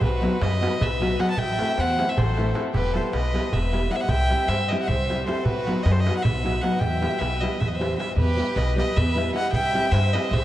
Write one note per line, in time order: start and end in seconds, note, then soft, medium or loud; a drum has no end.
0.01 0.26 B1 loud
0.01 0.43 F#4 medium
0.01 0.44 B4 loud
0.01 darbuka dum loud
0.12 darbuka tek soft
0.21 0.36 F#3 medium
0.21 0.36 B3 medium
0.21 0.36 D#4 medium
0.21 0.37 F#4 medium
0.21 darbuka tek medium
0.41 0.65 F#2 loud
0.41 0.82 B4 medium
0.41 0.83 D#5 loud
0.41 darbuka tek medium
0.60 0.76 F#3 medium
0.60 0.76 B3 medium
0.60 0.76 D#4 medium
0.60 0.76 F#4 medium
0.60 darbuka tek medium
0.81 1.15 B1 loud
0.81 1.21 B4 medium
0.81 1.21 E5 loud
0.81 darbuka dum loud
1.00 1.14 F#3 medium
1.00 1.15 B3 medium
1.00 1.15 D#4 medium
1.00 1.15 F#4 medium
1.00 darbuka tek medium
1.11 darbuka tek soft
1.19 1.33 F#3 medium
1.19 1.33 B3 medium
1.19 1.33 D#4 medium
1.19 1.33 F#4 medium
1.19 1.30 D#5 medium
1.19 1.30 F#5 loud
1.19 darbuka tek medium
1.30 1.38 F#5 medium
1.30 1.39 A5 medium
1.37 1.61 A1 medium
1.37 1.78 E5 loud
1.37 1.81 G5 loud
1.37 darbuka dum medium
1.58 1.73 A3 medium
1.58 1.73 C4 medium
1.58 1.73 E4 medium
1.58 1.74 A4 medium
1.58 darbuka tek medium
1.77 2.02 E2 loud
1.77 2.07 C5 medium
1.77 2.11 F#5 loud
1.77 darbuka tek medium
1.89 darbuka tek soft
1.99 2.13 A3 medium
1.99 2.13 C4 medium
1.99 2.13 E4 soft
1.99 2.14 A4 medium
1.99 darbuka tek medium
2.07 2.18 C5 medium
2.07 2.19 E5 medium
2.07 darbuka tek soft
2.16 2.51 A1 medium
2.16 2.59 A4 medium
2.16 2.60 C5 medium
2.16 darbuka dum loud
2.28 darbuka tek soft
2.37 2.51 A3 medium
2.37 2.51 C4 medium
2.37 2.52 E4 medium
2.37 2.52 A4 medium
2.37 darbuka tek medium
2.47 darbuka tek soft
2.54 2.68 A3 medium
2.54 2.69 C4 medium
2.54 2.69 E4 medium
2.54 2.69 A4 medium
2.54 darbuka tek medium
2.65 darbuka tek soft
2.73 2.97 E1 medium
2.73 2.95 G4 medium
2.73 2.98 B4 medium
2.73 darbuka dum loud
2.93 3.09 G3 medium
2.93 3.09 B3 medium
2.93 3.09 E4 medium
2.93 3.09 G4 medium
2.93 3.12 A4 medium
2.93 3.14 C5 medium
2.93 darbuka tek medium
3.13 3.37 B1 loud
3.13 3.54 B4 medium
3.13 3.55 D#5 medium
3.13 darbuka tek medium
3.33 3.48 G3 medium
3.33 3.48 B3 medium
3.33 3.48 E4 soft
3.33 3.49 G4 medium
3.33 darbuka tek medium
3.53 3.87 E1 medium
3.53 3.92 B4 medium
3.53 3.92 E5 medium
3.53 darbuka dum medium
3.72 3.86 G3 medium
3.72 3.86 B3 soft
3.72 3.87 E4 medium
3.72 3.87 G4 medium
3.72 darbuka tek medium
3.83 darbuka tek soft
3.90 4.04 G3 medium
3.90 4.04 B3 medium
3.90 4.05 E4 medium
3.90 4.05 G4 medium
3.90 3.97 D#5 medium
3.90 3.97 F#5 medium
3.90 darbuka tek medium
3.96 4.02 C5 soft
3.96 4.02 E5 medium
4.00 4.10 D#5 medium
4.00 4.10 F#5 medium
4.08 4.33 C2 medium
4.08 4.51 E5 medium
4.08 4.50 G5 loud
4.08 darbuka dum medium
4.19 darbuka tek soft
4.30 4.44 G3 medium
4.30 4.45 C4 medium
4.30 4.45 E4 medium
4.30 4.45 G4 medium
4.30 darbuka tek medium
4.48 4.72 G2 medium
4.48 4.71 C5 medium
4.48 4.70 E5 loud
4.48 darbuka tek medium
4.68 4.85 G3 medium
4.68 4.85 C4 soft
4.68 4.80 B4 medium
4.68 4.80 D#5 medium
4.68 darbuka tek medium
4.72 4.85 E4 medium
4.72 4.86 G4 medium
4.81 4.89 D#5 medium
4.81 4.89 F#5 medium
4.87 5.22 C2 loud
4.87 5.26 C5 medium
4.87 5.25 E5 medium
4.87 darbuka dum medium
5.09 5.23 G3 medium
5.09 5.23 C4 medium
5.09 5.24 E4 medium
5.09 5.24 G4 medium
5.09 darbuka tek medium
5.19 darbuka tek soft
5.26 5.41 G3 medium
5.26 5.41 C4 medium
5.26 5.41 E4 medium
5.26 5.42 G4 medium
5.26 5.47 A4 medium
5.26 5.45 C5 medium
5.26 darbuka tek medium
5.44 5.69 B1 medium
5.44 5.87 F#4 medium
5.44 5.85 B4 loud
5.44 darbuka dum medium
5.56 darbuka tek soft
5.66 5.81 F#3 medium
5.66 5.81 B3 medium
5.66 5.81 D#4 medium
5.66 5.82 F#4 medium
5.66 darbuka tek medium
5.83 6.09 F#2 loud
5.83 5.93 B4 medium
5.83 5.93 D#5 medium
5.83 darbuka tek medium
5.91 6.00 A4 medium
5.91 6.01 C5 medium
5.99 6.18 B4 medium
5.99 6.16 D#5 loud
6.06 6.20 F#3 medium
6.06 6.21 B3 soft
6.06 6.21 D#4 medium
6.06 6.21 F#4 medium
6.06 darbuka tek medium
6.17 6.27 D#5 medium
6.17 6.24 F#5 medium
6.22 6.59 B1 loud
6.22 6.65 B4 medium
6.22 6.63 E5 medium
6.22 darbuka dum medium
6.43 6.58 F#3 medium
6.43 6.58 B3 medium
6.43 6.58 D#4 medium
6.43 6.59 F#4 medium
6.43 darbuka tek medium
6.54 darbuka tek soft
6.61 6.77 F#3 medium
6.61 6.77 B3 medium
6.61 6.77 D#4 medium
6.61 6.78 F#4 medium
6.61 6.83 D#5 medium
6.61 6.80 F#5 medium
6.61 darbuka tek medium
6.79 7.06 E2 medium
6.79 7.22 E5 medium
6.79 7.20 G5 medium
6.79 darbuka dum medium
7.01 7.16 G3 medium
7.01 7.16 B3 medium
7.01 7.16 E4 medium
7.01 7.17 G4 medium
7.01 darbuka tek medium
7.18 7.45 B1 loud
7.18 7.41 B4 medium
7.18 7.42 E5 loud
7.18 darbuka tek medium
7.33 darbuka tek soft
7.40 7.56 G3 medium
7.40 7.56 B3 soft
7.40 7.57 E4 soft
7.40 7.57 G4 medium
7.40 7.61 B4 medium
7.40 7.61 D#5 medium
7.40 darbuka tek medium
7.53 darbuka tek soft
7.60 7.94 E2 loud
7.60 7.68 B4 medium
7.60 7.69 E5 medium
7.60 darbuka dum medium
7.68 7.76 B4 soft
7.68 7.76 D#5 medium
7.72 7.99 C5 medium
7.72 7.97 E5 medium
7.72 darbuka tek soft
7.79 7.94 G3 medium
7.79 7.94 B3 medium
7.79 7.94 E4 medium
7.79 7.95 G4 medium
7.79 darbuka tek medium
7.91 darbuka tek soft
7.96 8.11 G3 medium
7.96 8.12 B3 medium
7.96 8.12 E4 medium
7.96 8.12 G4 medium
7.96 8.15 E5 medium
7.96 darbuka tek medium
8.00 8.16 C5 medium
8.09 darbuka tek soft
8.16 8.40 E2 medium
8.16 8.57 G4 loud
8.16 8.59 B4 loud
8.16 darbuka dum medium
8.29 darbuka tek soft
8.36 8.51 G3 medium
8.36 8.52 B3 medium
8.36 8.52 E4 medium
8.36 8.52 G4 medium
8.36 darbuka tek medium
8.56 8.80 B1 loud
8.56 8.78 B4 medium
8.56 8.77 D#5 loud
8.56 darbuka tek medium
8.76 8.91 G3 medium
8.76 8.91 B3 medium
8.76 8.92 E4 medium
8.76 8.92 G4 medium
8.76 8.97 B4 medium
8.76 8.98 D#5 medium
8.76 darbuka tek medium
8.96 9.30 E2 loud
8.96 9.35 B4 medium
8.96 9.34 E5 medium
8.96 darbuka dum medium
9.15 9.30 G3 medium
9.15 9.30 B3 medium
9.15 9.30 E4 medium
9.15 9.31 G4 medium
9.15 darbuka tek medium
9.27 darbuka tek soft
9.33 9.48 G3 medium
9.33 9.48 B3 medium
9.33 9.48 E4 medium
9.33 9.48 G4 medium
9.33 9.52 D#5 medium
9.33 9.51 F#5 loud
9.33 darbuka tek medium
9.52 9.76 C2 loud
9.52 9.93 E5 loud
9.52 9.93 G5 loud
9.52 darbuka dum medium
9.65 darbuka tek soft
9.72 9.87 G3 medium
9.72 9.88 C4 medium
9.72 9.88 E4 medium
9.72 9.88 G4 medium
9.72 darbuka tek medium
9.91 10.16 G2 loud
9.91 10.14 C5 medium
9.91 10.14 E5 loud
9.91 darbuka tek medium
10.12 10.28 G3 medium
10.12 10.28 C4 soft
10.12 10.28 E4 medium
10.12 10.29 G4 medium
10.12 10.32 B4 medium
10.12 10.34 D#5 medium
10.12 darbuka tek medium
10.31 10.45 C2 loud
10.31 10.45 C5 medium
10.31 10.45 E5 medium
10.31 darbuka dum loud